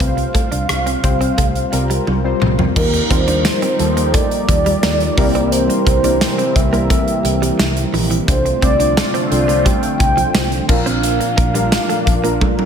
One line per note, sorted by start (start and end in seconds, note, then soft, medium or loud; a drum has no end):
0.00 0.25 C2 loud
0.00 1.00 C3 medium
0.00 0.62 G3 medium
0.00 0.62 C4 medium
0.00 0.63 F4 medium
0.00 0.07 B4 medium
0.00 2.42 F5 loud
0.00 kick loud
0.00 closed hi-hat medium
0.07 0.66 C5 medium
0.17 muted clean electric guitar stroke soft
0.17 closed hi-hat soft
0.34 0.48 A3 medium
0.34 kick medium
0.34 closed hi-hat medium
0.52 0.64 C2 medium
0.52 0.65 D4 medium
0.52 closed hi-hat medium
0.69 0.94 C2 medium
0.69 cross-stick loud
0.69 closed hi-hat medium
0.86 1.00 C4 medium
0.86 closed hi-hat soft
1.03 1.29 C2 loud
1.03 1.45 G3 medium
1.03 1.45 C4 medium
1.03 1.45 F4 medium
1.03 1.46 C5 medium
1.03 muted clean electric guitar stroke soft
1.03 kick medium
1.03 closed hi-hat medium
1.21 1.34 C4 medium
1.21 closed hi-hat soft
1.38 1.63 C2 medium
1.38 1.51 A3 medium
1.38 kick medium
1.38 closed hi-hat medium
1.55 closed hi-hat soft
1.72 1.98 C2 loud
1.72 2.04 G3 medium
1.72 2.04 C4 medium
1.72 2.04 F4 medium
1.72 2.04 A#4 medium
1.72 muted clean electric guitar stroke soft
1.72 closed hi-hat medium
1.90 2.03 G3 medium
1.90 closed hi-hat soft
2.07 2.32 C2 loud
2.07 muted clean electric guitar stroke soft
2.07 high tom medium
2.24 2.55 G3 medium
2.24 2.56 C4 medium
2.24 2.56 F4 medium
2.24 2.56 C5 medium
2.42 2.67 C2 medium
2.42 2.55 F3 medium
2.42 mid tom medium
2.59 2.72 F3 medium
2.59 floor tom medium
2.76 3.01 D#2 loud
2.76 3.76 D#3 medium
2.76 5.15 F3 medium
2.76 2.97 G3 medium
2.76 8.24 G3 medium
2.76 8.24 A#3 medium
2.76 2.97 A#3 medium
2.76 5.15 D#4 medium
2.76 2.97 D#4 medium
2.76 2.97 F4 medium
2.76 8.24 G4 medium
2.76 3.13 A#4 loud
2.76 2.97 A#4 medium
2.76 kick loud
2.76 crash loud
2.94 muted clean electric guitar stroke soft
2.94 closed hi-hat soft
3.10 3.48 D#2 medium
3.10 3.52 G3 medium
3.10 3.52 A#3 medium
3.10 3.24 C4 medium
3.10 3.52 D#4 medium
3.10 3.52 F4 medium
3.10 3.53 A#4 medium
3.10 4.15 C5 loud
3.10 kick medium
3.10 closed hi-hat medium
3.28 3.41 D4 medium
3.28 closed hi-hat medium
3.45 snare loud
3.45 closed hi-hat loud
3.45 tambourine medium
3.62 3.76 C4 medium
3.62 closed hi-hat medium
3.79 4.17 D#2 medium
3.79 4.62 G3 medium
3.79 4.63 A#3 medium
3.79 4.63 D#4 medium
3.79 4.63 F4 medium
3.79 4.63 A4 medium
3.79 muted clean electric guitar stroke soft
3.79 closed hi-hat medium
3.97 4.10 A#3 medium
3.97 closed hi-hat soft
4.14 4.28 A3 medium
4.14 5.51 D5 loud
4.14 kick medium
4.14 closed hi-hat medium
4.31 closed hi-hat soft
4.49 4.73 D#2 loud
4.49 muted clean electric guitar stroke soft
4.49 kick medium
4.49 closed hi-hat medium
4.66 4.79 G3 medium
4.66 closed hi-hat soft
4.83 5.08 D#2 loud
4.83 4.97 A#3 medium
4.83 snare loud
4.83 closed hi-hat medium
4.83 tambourine medium
5.00 closed hi-hat medium
5.17 5.67 C2 loud
5.17 6.17 C3 medium
5.17 8.25 E3 medium
5.17 5.86 G3 loud
5.17 5.86 A#3 medium
5.17 8.25 C4 medium
5.17 5.86 C4 medium
5.17 5.87 E4 medium
5.17 5.87 A#4 loud
5.17 muted clean electric guitar stroke soft
5.17 kick loud
5.17 open hi-hat medium
5.35 5.48 C4 medium
5.35 closed hi-hat medium
5.52 6.57 C5 loud
5.52 closed hi-hat loud
5.70 muted clean electric guitar stroke soft
5.70 closed hi-hat soft
5.87 6.24 C2 medium
5.87 6.00 A#3 medium
5.87 kick medium
5.87 closed hi-hat medium
6.03 6.45 G3 medium
6.03 6.45 A#3 medium
6.03 6.45 C4 medium
6.03 6.18 D4 medium
6.03 6.46 E4 medium
6.03 6.46 A#4 medium
6.03 closed hi-hat medium
6.21 snare loud
6.21 closed hi-hat loud
6.21 tambourine medium
6.38 6.52 C4 medium
6.38 closed hi-hat medium
6.56 6.93 C2 loud
6.56 7.93 E5 loud
6.56 muted clean electric guitar stroke soft
6.56 kick loud
6.56 closed hi-hat medium
6.73 7.56 G3 medium
6.73 6.86 A#3 medium
6.73 7.56 A#3 medium
6.73 7.56 C4 medium
6.73 7.56 E4 medium
6.73 7.56 A#4 medium
6.73 closed hi-hat soft
6.90 7.04 A3 medium
6.90 kick medium
6.90 closed hi-hat medium
7.08 closed hi-hat soft
7.25 7.49 C2 loud
7.25 muted clean electric guitar stroke soft
7.25 closed hi-hat medium
7.42 7.55 G3 medium
7.42 closed hi-hat medium
7.59 7.84 C2 loud
7.59 muted clean electric guitar stroke soft
7.59 snare loud
7.59 closed hi-hat medium
7.59 tambourine medium
7.77 closed hi-hat medium
7.93 8.18 A#1 medium
7.93 8.07 E3 medium
7.93 open hi-hat medium
8.11 8.24 E3 medium
8.11 closed hi-hat medium
8.27 8.53 C2 loud
8.27 9.27 C3 medium
8.27 10.67 D3 medium
8.27 12.65 F3 medium
8.27 8.48 A3 medium
8.27 10.67 A3 medium
8.27 10.67 C4 medium
8.27 8.49 C4 medium
8.27 8.49 D4 medium
8.27 10.67 F4 medium
8.27 8.49 F4 medium
8.27 8.49 C5 medium
8.27 8.61 C5 loud
8.27 kick loud
8.27 closed hi-hat loud
8.45 muted clean electric guitar stroke soft
8.45 closed hi-hat medium
8.62 9.00 C2 loud
8.62 9.04 A3 medium
8.62 9.04 C4 medium
8.62 8.76 C4 medium
8.62 9.04 D4 medium
8.62 9.04 F4 medium
8.62 9.04 C5 medium
8.62 9.28 D5 loud
8.62 kick medium
8.62 closed hi-hat medium
8.80 8.93 D4 medium
8.80 closed hi-hat medium
8.97 snare loud
8.97 closed hi-hat loud
8.97 tambourine medium
9.14 9.28 C4 medium
9.14 closed hi-hat medium
9.31 9.69 C2 loud
9.31 10.14 A3 medium
9.31 10.14 C4 medium
9.31 10.15 D4 medium
9.31 10.15 F4 medium
9.31 10.15 C5 medium
9.31 9.64 D5 medium
9.31 muted clean electric guitar stroke soft
9.31 closed hi-hat medium
9.48 9.62 A3 medium
9.48 closed hi-hat soft
9.65 9.79 G3 medium
9.65 10.65 G5 loud
9.65 kick medium
9.65 closed hi-hat medium
9.83 closed hi-hat soft
10.00 10.25 C2 loud
10.00 muted clean electric guitar stroke soft
10.00 kick loud
10.00 closed hi-hat medium
10.17 10.31 F3 medium
10.17 closed hi-hat medium
10.35 10.59 C2 medium
10.35 10.48 A3 medium
10.35 snare loud
10.35 closed hi-hat medium
10.35 tambourine medium
10.52 closed hi-hat medium
10.69 11.19 A#1 medium
10.69 11.69 A#2 medium
10.69 12.65 A#3 medium
10.69 11.38 D4 medium
10.69 12.65 D4 medium
10.69 11.38 F4 medium
10.69 11.38 A#4 loud
10.69 12.65 F5 medium
10.69 muted clean electric guitar stroke soft
10.69 kick loud
10.69 crash medium
10.86 11.00 C4 medium
10.86 closed hi-hat medium
11.03 closed hi-hat loud
11.20 muted clean electric guitar stroke soft
11.20 closed hi-hat soft
11.37 11.75 A#1 loud
11.37 11.51 A#3 medium
11.37 kick medium
11.37 closed hi-hat medium
11.54 11.68 G3 medium
11.54 11.97 D4 medium
11.54 11.97 F4 medium
11.54 11.97 A#4 medium
11.54 closed hi-hat medium
11.72 snare loud
11.72 closed hi-hat loud
11.72 tambourine medium
11.89 12.03 A3 medium
11.89 closed hi-hat medium
12.06 12.44 A#1 loud
12.06 muted clean electric guitar stroke soft
12.06 kick medium
12.06 closed hi-hat medium
12.24 12.37 A#3 medium
12.24 12.65 D4 medium
12.24 12.65 F4 medium
12.24 12.65 A#4 loud
12.24 closed hi-hat soft
12.41 12.55 A3 medium
12.41 kick medium
12.41 high tom medium
12.59 high tom medium